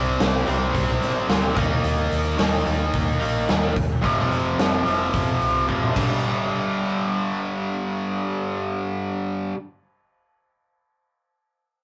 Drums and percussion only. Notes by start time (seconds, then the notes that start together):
0.20 snare, open hi-hat
0.47 open hi-hat
0.74 kick, open hi-hat
1.02 snare, open hi-hat
1.29 snare, open hi-hat
1.57 kick, open hi-hat
1.84 open hi-hat
2.11 open hi-hat
2.39 snare, open hi-hat
2.67 open hi-hat
2.93 kick, open hi-hat
3.22 open hi-hat
3.49 snare, open hi-hat
3.76 kick, open hi-hat
4.04 kick, open hi-hat
4.19 snare
4.32 open hi-hat
4.59 snare, open hi-hat
4.87 open hi-hat
5.14 kick, open hi-hat
5.41 open hi-hat
5.69 kick
5.83 mid tom
5.96 kick, crash